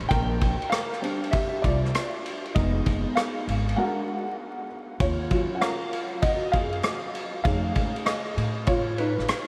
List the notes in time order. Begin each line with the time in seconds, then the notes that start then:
0.00 ride
0.09 A#1 A#4 G5, kick, ride
0.41 kick, ride
0.62 ride
0.70 A#4 F5, cross-stick, hi-hat pedal, ride
0.93 cross-stick
1.01 G3 C4 D4, ride
1.24 ride
1.31 G4 E5, kick, ride
1.62 C2 F4 D5, kick, ride
1.85 cross-stick
1.94 cross-stick, hi-hat pedal, ride
2.26 ride
2.45 ride
2.55 F1 G#3 B3 D#4 G#4 D#5, kick, ride
2.86 F#1, kick, ride
3.15 G#4 F5, cross-stick, hi-hat pedal, ride
3.48 G#1, ride
3.69 ride
3.76 G#3 D4 F#4 A#4 F#5
5.00 D#2 F4 C#5, kick, ride
5.30 F#3 C#4 F4, kick, ride
5.55 F#5
5.61 A#4 F5, cross-stick, hi-hat pedal, ride
5.93 ride
6.22 F#4 D#5, kick, ride
6.52 F#2 G#4 F5, kick, ride
6.73 ride
6.83 cross-stick, hi-hat pedal, ride
7.15 ride
7.44 F2 A3 C#4 D#4 G#4 F5, kick, ride
7.75 G#2, kick, ride
7.96 ride
8.05 G#4 D#5, cross-stick, hi-hat pedal, ride
8.37 A2, ride
8.67 F4 C#5, kick, ride
8.98 D#4 B4, ride
9.18 A1, cross-stick
9.28 cross-stick, hi-hat pedal, ride